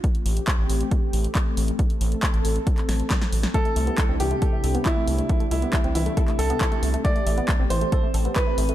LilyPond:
<<
  \new Staff \with { instrumentName = "Grand piano" } { \time 4/4 \key a \minor \tempo 4 = 137 r1 | r1 | a'4. g'4. e'4~ | e'8 e'4 e'4 a'4. |
d''4. c''4. b'4 | }
  \new Staff \with { instrumentName = "Analog synth pad" } { \time 4/4 \key a \minor << { g'1 | a'1 | g'1~ | g'1~ |
g'1 | } \\ { <a c'>1~ | <a c'>1 | <c d' e'>1~ | <c d' e'>1 |
<a c'>1 | } >> }
  \new Staff \with { instrumentName = "Synth pluck" } { \time 4/4 \key a \minor r1 | r1 | a16 a16 a16 b16 a16 c'16 e16 a16 a'16 a16 a'16 b16 e'16 a16 a16 a16 | a16 a16 a16 b16 a16 c'16 e16 a16 a'16 a16 a'16 b16 e'16 a16 a16 a16 |
a16 a16 a16 b16 a16 c'16 e16 a16 a'16 a16 a'16 b16 e'16 a16 a16 a16 | }
  \new Staff \with { instrumentName = "Analog synth bass" } { \clef bass \time 4/4 \key a \minor r8 a,,16 r8 a,,16 a,,16 r8. a,,16 r8. a,,16 r16 | r8 a,,16 r8 a,,16 a,,16 r8. a,,16 r8. a,,16 r16 | r8 c,16 r8 c,16 c,16 r8. c,16 r8. c,16 r16 | r8 c,16 r8 c,16 c,16 r8. c,16 r8. c,16 r16 |
r8 a,,16 r8 a,,16 a,,16 r8. a,,16 r8. a,,16 r16 | }
  \new DrumStaff \with { instrumentName = "Drums" } \drummode { \time 4/4 <hh bd>16 hh16 hho16 hh16 <hc hh bd>8 hho16 hh16 <hh bd>8 hho16 hh16 <hc hh bd>8 hho16 hh16 | <hh bd>16 hh16 hho16 hh16 <hc hh bd>16 hh16 hho16 hh16 <hh bd>16 <hc hh>16 <hho sn>16 hh16 <hc hh bd sn>16 sn16 hho16 <hh sn>16 | <hh bd>16 hh16 hho16 hh16 <hc hh bd>8 hho16 hh16 <hh bd>8 hho16 hh16 <hc hh bd>8 hho16 hh16 | <hh bd>16 hh16 hho16 hh16 <hc hh bd>16 hh16 hho16 hh16 <hh bd>16 <hc hh>16 hho16 hh16 <hc hh bd>16 hh16 hho16 hh16 |
<hh bd>16 hh16 hho16 hh16 <hc hh bd>8 hho16 hh16 <hh bd>8 hho16 hh16 <hc hh bd>8 hho16 hh16 | }
>>